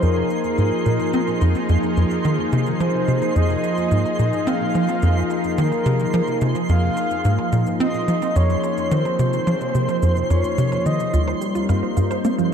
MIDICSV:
0, 0, Header, 1, 8, 480
1, 0, Start_track
1, 0, Key_signature, -4, "minor"
1, 0, Tempo, 555556
1, 22, Time_signature, 4, 2, 24, 8
1, 10832, End_track
2, 0, Start_track
2, 0, Title_t, "Synth texture"
2, 0, Program_c, 0, 99
2, 0, Note_on_c, 0, 84, 74
2, 9622, Note_on_c, 0, 72, 78
2, 9632, Note_off_c, 0, 84, 0
2, 10832, Note_off_c, 0, 72, 0
2, 10832, End_track
3, 0, Start_track
3, 0, Title_t, "Soft synth lead"
3, 0, Program_c, 1, 80
3, 18, Note_on_c, 1, 70, 94
3, 254, Note_off_c, 1, 70, 0
3, 259, Note_on_c, 1, 70, 89
3, 1186, Note_off_c, 1, 70, 0
3, 2422, Note_on_c, 1, 72, 85
3, 2900, Note_on_c, 1, 75, 100
3, 2913, Note_off_c, 1, 72, 0
3, 3864, Note_on_c, 1, 77, 106
3, 3877, Note_off_c, 1, 75, 0
3, 4583, Note_off_c, 1, 77, 0
3, 4821, Note_on_c, 1, 70, 110
3, 5507, Note_off_c, 1, 70, 0
3, 5781, Note_on_c, 1, 77, 116
3, 6467, Note_off_c, 1, 77, 0
3, 6743, Note_on_c, 1, 75, 109
3, 7222, Note_on_c, 1, 73, 102
3, 7235, Note_off_c, 1, 75, 0
3, 7703, Note_on_c, 1, 72, 104
3, 7716, Note_off_c, 1, 73, 0
3, 8897, Note_off_c, 1, 72, 0
3, 8902, Note_on_c, 1, 73, 97
3, 9382, Note_on_c, 1, 75, 87
3, 9395, Note_off_c, 1, 73, 0
3, 9622, Note_off_c, 1, 75, 0
3, 10832, End_track
4, 0, Start_track
4, 0, Title_t, "Synth arpeggio sound"
4, 0, Program_c, 2, 84
4, 9621, Note_on_c, 2, 65, 97
4, 9735, Note_off_c, 2, 65, 0
4, 9740, Note_on_c, 2, 72, 102
4, 9805, Note_off_c, 2, 72, 0
4, 9861, Note_on_c, 2, 67, 70
4, 9968, Note_off_c, 2, 67, 0
4, 9981, Note_on_c, 2, 65, 96
4, 10088, Note_off_c, 2, 65, 0
4, 10101, Note_on_c, 2, 77, 98
4, 10208, Note_off_c, 2, 77, 0
4, 10221, Note_on_c, 2, 72, 68
4, 10286, Note_off_c, 2, 72, 0
4, 10341, Note_on_c, 2, 77, 73
4, 10448, Note_off_c, 2, 77, 0
4, 10460, Note_on_c, 2, 72, 95
4, 10568, Note_off_c, 2, 72, 0
4, 10581, Note_on_c, 2, 60, 77
4, 10645, Note_off_c, 2, 60, 0
4, 10700, Note_on_c, 2, 53, 99
4, 10808, Note_off_c, 2, 53, 0
4, 10832, End_track
5, 0, Start_track
5, 0, Title_t, "Analog synth pad"
5, 0, Program_c, 3, 89
5, 0, Note_on_c, 3, 53, 78
5, 0, Note_on_c, 3, 58, 69
5, 0, Note_on_c, 3, 63, 78
5, 0, Note_on_c, 3, 68, 77
5, 0, Note_on_c, 3, 70, 65
5, 9621, Note_off_c, 3, 53, 0
5, 9622, Note_off_c, 3, 68, 0
5, 9622, Note_off_c, 3, 70, 0
5, 9622, Note_on_c, 3, 55, 73
5, 9776, Note_on_c, 3, 70, 84
5, 9792, Note_on_c, 3, 60, 75
5, 9960, Note_on_c, 3, 75, 78
5, 10031, Note_on_c, 3, 65, 85
5, 10832, Note_off_c, 3, 55, 0
5, 10832, Note_off_c, 3, 58, 0
5, 10832, Note_off_c, 3, 60, 0
5, 10832, Note_off_c, 3, 63, 0
5, 10832, Note_off_c, 3, 65, 0
5, 10832, Note_off_c, 3, 70, 0
5, 10832, Note_off_c, 3, 75, 0
5, 10832, End_track
6, 0, Start_track
6, 0, Title_t, "Analog synth bass"
6, 0, Program_c, 4, 38
6, 23, Note_on_c, 4, 41, 78
6, 200, Note_off_c, 4, 41, 0
6, 503, Note_on_c, 4, 44, 72
6, 621, Note_off_c, 4, 44, 0
6, 743, Note_on_c, 4, 46, 75
6, 861, Note_off_c, 4, 46, 0
6, 983, Note_on_c, 4, 60, 95
6, 1053, Note_off_c, 4, 60, 0
6, 1222, Note_on_c, 4, 41, 93
6, 1340, Note_off_c, 4, 41, 0
6, 1463, Note_on_c, 4, 41, 96
6, 1533, Note_off_c, 4, 41, 0
6, 1703, Note_on_c, 4, 41, 74
6, 1773, Note_off_c, 4, 41, 0
6, 1942, Note_on_c, 4, 51, 98
6, 2061, Note_off_c, 4, 51, 0
6, 2182, Note_on_c, 4, 48, 96
6, 2359, Note_off_c, 4, 48, 0
6, 2422, Note_on_c, 4, 53, 94
6, 2493, Note_off_c, 4, 53, 0
6, 2661, Note_on_c, 4, 48, 72
6, 2780, Note_off_c, 4, 48, 0
6, 2902, Note_on_c, 4, 41, 77
6, 3079, Note_off_c, 4, 41, 0
6, 3382, Note_on_c, 4, 44, 73
6, 3500, Note_off_c, 4, 44, 0
6, 3622, Note_on_c, 4, 46, 72
6, 3740, Note_off_c, 4, 46, 0
6, 3862, Note_on_c, 4, 60, 96
6, 3933, Note_off_c, 4, 60, 0
6, 4103, Note_on_c, 4, 53, 71
6, 4221, Note_off_c, 4, 53, 0
6, 4343, Note_on_c, 4, 41, 97
6, 4520, Note_off_c, 4, 41, 0
6, 4822, Note_on_c, 4, 51, 97
6, 4940, Note_off_c, 4, 51, 0
6, 5061, Note_on_c, 4, 48, 100
6, 5239, Note_off_c, 4, 48, 0
6, 5302, Note_on_c, 4, 53, 95
6, 5373, Note_off_c, 4, 53, 0
6, 5542, Note_on_c, 4, 48, 74
6, 5660, Note_off_c, 4, 48, 0
6, 5782, Note_on_c, 4, 41, 82
6, 5960, Note_off_c, 4, 41, 0
6, 6262, Note_on_c, 4, 44, 75
6, 6380, Note_off_c, 4, 44, 0
6, 6501, Note_on_c, 4, 46, 74
6, 6620, Note_off_c, 4, 46, 0
6, 6741, Note_on_c, 4, 60, 100
6, 6813, Note_off_c, 4, 60, 0
6, 6981, Note_on_c, 4, 53, 73
6, 7100, Note_off_c, 4, 53, 0
6, 7222, Note_on_c, 4, 41, 95
6, 7399, Note_off_c, 4, 41, 0
6, 7701, Note_on_c, 4, 51, 95
6, 7820, Note_off_c, 4, 51, 0
6, 7941, Note_on_c, 4, 48, 95
6, 8119, Note_off_c, 4, 48, 0
6, 8182, Note_on_c, 4, 53, 96
6, 8253, Note_off_c, 4, 53, 0
6, 8421, Note_on_c, 4, 48, 75
6, 8540, Note_off_c, 4, 48, 0
6, 8661, Note_on_c, 4, 41, 79
6, 8839, Note_off_c, 4, 41, 0
6, 8901, Note_on_c, 4, 41, 73
6, 9020, Note_off_c, 4, 41, 0
6, 9141, Note_on_c, 4, 48, 95
6, 9319, Note_off_c, 4, 48, 0
6, 9381, Note_on_c, 4, 51, 76
6, 9500, Note_off_c, 4, 51, 0
6, 9621, Note_on_c, 4, 39, 78
6, 9799, Note_off_c, 4, 39, 0
6, 10101, Note_on_c, 4, 43, 73
6, 10220, Note_off_c, 4, 43, 0
6, 10341, Note_on_c, 4, 43, 74
6, 10460, Note_off_c, 4, 43, 0
6, 10581, Note_on_c, 4, 58, 95
6, 10652, Note_off_c, 4, 58, 0
6, 10832, End_track
7, 0, Start_track
7, 0, Title_t, "Percussion blips"
7, 142, Note_on_c, 9, 77, 38
7, 228, Note_off_c, 9, 77, 0
7, 500, Note_on_c, 9, 77, 38
7, 587, Note_off_c, 9, 77, 0
7, 861, Note_on_c, 9, 77, 40
7, 947, Note_off_c, 9, 77, 0
7, 1220, Note_on_c, 9, 77, 39
7, 1307, Note_off_c, 9, 77, 0
7, 1580, Note_on_c, 9, 77, 41
7, 1666, Note_off_c, 9, 77, 0
7, 2061, Note_on_c, 9, 77, 38
7, 2147, Note_off_c, 9, 77, 0
7, 2422, Note_on_c, 9, 77, 37
7, 2508, Note_off_c, 9, 77, 0
7, 2782, Note_on_c, 9, 77, 39
7, 2868, Note_off_c, 9, 77, 0
7, 3142, Note_on_c, 9, 77, 38
7, 3228, Note_off_c, 9, 77, 0
7, 3502, Note_on_c, 9, 77, 38
7, 3589, Note_off_c, 9, 77, 0
7, 3861, Note_on_c, 9, 77, 39
7, 3948, Note_off_c, 9, 77, 0
7, 4222, Note_on_c, 9, 77, 38
7, 4308, Note_off_c, 9, 77, 0
7, 4581, Note_on_c, 9, 77, 40
7, 4667, Note_off_c, 9, 77, 0
7, 4941, Note_on_c, 9, 77, 38
7, 5027, Note_off_c, 9, 77, 0
7, 5300, Note_on_c, 9, 77, 41
7, 5387, Note_off_c, 9, 77, 0
7, 5661, Note_on_c, 9, 77, 39
7, 5747, Note_off_c, 9, 77, 0
7, 6021, Note_on_c, 9, 77, 41
7, 6107, Note_off_c, 9, 77, 0
7, 6382, Note_on_c, 9, 77, 39
7, 6468, Note_off_c, 9, 77, 0
7, 6741, Note_on_c, 9, 77, 38
7, 6828, Note_off_c, 9, 77, 0
7, 7103, Note_on_c, 9, 77, 41
7, 7189, Note_off_c, 9, 77, 0
7, 7462, Note_on_c, 9, 77, 38
7, 7548, Note_off_c, 9, 77, 0
7, 7821, Note_on_c, 9, 77, 41
7, 7907, Note_off_c, 9, 77, 0
7, 8182, Note_on_c, 9, 77, 41
7, 8268, Note_off_c, 9, 77, 0
7, 8542, Note_on_c, 9, 77, 39
7, 8628, Note_off_c, 9, 77, 0
7, 8902, Note_on_c, 9, 77, 40
7, 8989, Note_off_c, 9, 77, 0
7, 9262, Note_on_c, 9, 77, 43
7, 9349, Note_off_c, 9, 77, 0
7, 9743, Note_on_c, 9, 77, 41
7, 9829, Note_off_c, 9, 77, 0
7, 10102, Note_on_c, 9, 77, 41
7, 10188, Note_off_c, 9, 77, 0
7, 10462, Note_on_c, 9, 77, 43
7, 10548, Note_off_c, 9, 77, 0
7, 10832, End_track
8, 0, Start_track
8, 0, Title_t, "Drums"
8, 22, Note_on_c, 9, 82, 71
8, 109, Note_off_c, 9, 82, 0
8, 261, Note_on_c, 9, 82, 76
8, 347, Note_off_c, 9, 82, 0
8, 381, Note_on_c, 9, 82, 50
8, 467, Note_off_c, 9, 82, 0
8, 500, Note_on_c, 9, 82, 74
8, 587, Note_off_c, 9, 82, 0
8, 740, Note_on_c, 9, 82, 73
8, 827, Note_off_c, 9, 82, 0
8, 861, Note_on_c, 9, 82, 48
8, 947, Note_off_c, 9, 82, 0
8, 979, Note_on_c, 9, 82, 70
8, 1066, Note_off_c, 9, 82, 0
8, 1100, Note_on_c, 9, 82, 36
8, 1187, Note_off_c, 9, 82, 0
8, 1220, Note_on_c, 9, 82, 76
8, 1307, Note_off_c, 9, 82, 0
8, 1340, Note_on_c, 9, 82, 48
8, 1426, Note_off_c, 9, 82, 0
8, 1460, Note_on_c, 9, 82, 74
8, 1546, Note_off_c, 9, 82, 0
8, 1580, Note_on_c, 9, 82, 35
8, 1666, Note_off_c, 9, 82, 0
8, 1700, Note_on_c, 9, 82, 76
8, 1787, Note_off_c, 9, 82, 0
8, 1821, Note_on_c, 9, 82, 49
8, 1907, Note_off_c, 9, 82, 0
8, 1941, Note_on_c, 9, 82, 70
8, 2027, Note_off_c, 9, 82, 0
8, 2181, Note_on_c, 9, 82, 76
8, 2267, Note_off_c, 9, 82, 0
8, 2301, Note_on_c, 9, 82, 48
8, 2387, Note_off_c, 9, 82, 0
8, 2422, Note_on_c, 9, 82, 69
8, 2508, Note_off_c, 9, 82, 0
8, 2661, Note_on_c, 9, 82, 72
8, 2747, Note_off_c, 9, 82, 0
8, 2782, Note_on_c, 9, 82, 48
8, 2868, Note_off_c, 9, 82, 0
8, 2901, Note_on_c, 9, 82, 67
8, 2988, Note_off_c, 9, 82, 0
8, 3022, Note_on_c, 9, 82, 34
8, 3108, Note_off_c, 9, 82, 0
8, 3142, Note_on_c, 9, 82, 71
8, 3228, Note_off_c, 9, 82, 0
8, 3262, Note_on_c, 9, 82, 49
8, 3349, Note_off_c, 9, 82, 0
8, 3382, Note_on_c, 9, 82, 73
8, 3468, Note_off_c, 9, 82, 0
8, 3502, Note_on_c, 9, 82, 33
8, 3589, Note_off_c, 9, 82, 0
8, 3622, Note_on_c, 9, 82, 74
8, 3708, Note_off_c, 9, 82, 0
8, 3742, Note_on_c, 9, 82, 46
8, 3828, Note_off_c, 9, 82, 0
8, 3861, Note_on_c, 9, 82, 66
8, 3948, Note_off_c, 9, 82, 0
8, 4101, Note_on_c, 9, 82, 72
8, 4187, Note_off_c, 9, 82, 0
8, 4222, Note_on_c, 9, 82, 47
8, 4308, Note_off_c, 9, 82, 0
8, 4340, Note_on_c, 9, 82, 69
8, 4427, Note_off_c, 9, 82, 0
8, 4581, Note_on_c, 9, 82, 69
8, 4667, Note_off_c, 9, 82, 0
8, 4701, Note_on_c, 9, 82, 45
8, 4787, Note_off_c, 9, 82, 0
8, 4821, Note_on_c, 9, 82, 66
8, 4908, Note_off_c, 9, 82, 0
8, 4941, Note_on_c, 9, 82, 32
8, 5027, Note_off_c, 9, 82, 0
8, 5061, Note_on_c, 9, 82, 69
8, 5148, Note_off_c, 9, 82, 0
8, 5181, Note_on_c, 9, 82, 46
8, 5267, Note_off_c, 9, 82, 0
8, 5300, Note_on_c, 9, 82, 72
8, 5387, Note_off_c, 9, 82, 0
8, 5420, Note_on_c, 9, 82, 34
8, 5507, Note_off_c, 9, 82, 0
8, 5540, Note_on_c, 9, 82, 69
8, 5627, Note_off_c, 9, 82, 0
8, 5661, Note_on_c, 9, 82, 46
8, 5747, Note_off_c, 9, 82, 0
8, 5780, Note_on_c, 9, 82, 70
8, 5866, Note_off_c, 9, 82, 0
8, 6021, Note_on_c, 9, 82, 69
8, 6107, Note_off_c, 9, 82, 0
8, 6141, Note_on_c, 9, 82, 44
8, 6227, Note_off_c, 9, 82, 0
8, 6262, Note_on_c, 9, 82, 67
8, 6348, Note_off_c, 9, 82, 0
8, 6502, Note_on_c, 9, 82, 71
8, 6589, Note_off_c, 9, 82, 0
8, 6622, Note_on_c, 9, 82, 44
8, 6709, Note_off_c, 9, 82, 0
8, 6741, Note_on_c, 9, 82, 64
8, 6828, Note_off_c, 9, 82, 0
8, 6862, Note_on_c, 9, 82, 32
8, 6949, Note_off_c, 9, 82, 0
8, 6982, Note_on_c, 9, 82, 67
8, 7069, Note_off_c, 9, 82, 0
8, 7103, Note_on_c, 9, 82, 47
8, 7189, Note_off_c, 9, 82, 0
8, 7222, Note_on_c, 9, 82, 69
8, 7308, Note_off_c, 9, 82, 0
8, 7342, Note_on_c, 9, 82, 32
8, 7429, Note_off_c, 9, 82, 0
8, 7462, Note_on_c, 9, 82, 69
8, 7548, Note_off_c, 9, 82, 0
8, 7582, Note_on_c, 9, 82, 44
8, 7668, Note_off_c, 9, 82, 0
8, 7701, Note_on_c, 9, 82, 70
8, 7788, Note_off_c, 9, 82, 0
8, 7821, Note_on_c, 9, 82, 31
8, 7907, Note_off_c, 9, 82, 0
8, 7941, Note_on_c, 9, 82, 73
8, 8028, Note_off_c, 9, 82, 0
8, 8062, Note_on_c, 9, 82, 47
8, 8148, Note_off_c, 9, 82, 0
8, 8182, Note_on_c, 9, 82, 65
8, 8268, Note_off_c, 9, 82, 0
8, 8302, Note_on_c, 9, 82, 32
8, 8389, Note_off_c, 9, 82, 0
8, 8423, Note_on_c, 9, 82, 72
8, 8509, Note_off_c, 9, 82, 0
8, 8542, Note_on_c, 9, 82, 46
8, 8628, Note_off_c, 9, 82, 0
8, 8661, Note_on_c, 9, 82, 64
8, 8748, Note_off_c, 9, 82, 0
8, 8782, Note_on_c, 9, 82, 32
8, 8868, Note_off_c, 9, 82, 0
8, 8902, Note_on_c, 9, 82, 68
8, 8989, Note_off_c, 9, 82, 0
8, 9022, Note_on_c, 9, 82, 47
8, 9108, Note_off_c, 9, 82, 0
8, 9142, Note_on_c, 9, 82, 71
8, 9229, Note_off_c, 9, 82, 0
8, 9262, Note_on_c, 9, 82, 33
8, 9349, Note_off_c, 9, 82, 0
8, 9382, Note_on_c, 9, 82, 70
8, 9469, Note_off_c, 9, 82, 0
8, 9502, Note_on_c, 9, 82, 44
8, 9589, Note_off_c, 9, 82, 0
8, 9623, Note_on_c, 9, 82, 73
8, 9709, Note_off_c, 9, 82, 0
8, 9863, Note_on_c, 9, 82, 76
8, 9949, Note_off_c, 9, 82, 0
8, 9982, Note_on_c, 9, 82, 49
8, 10068, Note_off_c, 9, 82, 0
8, 10102, Note_on_c, 9, 82, 73
8, 10188, Note_off_c, 9, 82, 0
8, 10342, Note_on_c, 9, 82, 75
8, 10428, Note_off_c, 9, 82, 0
8, 10462, Note_on_c, 9, 82, 47
8, 10548, Note_off_c, 9, 82, 0
8, 10581, Note_on_c, 9, 82, 68
8, 10667, Note_off_c, 9, 82, 0
8, 10702, Note_on_c, 9, 82, 33
8, 10788, Note_off_c, 9, 82, 0
8, 10832, End_track
0, 0, End_of_file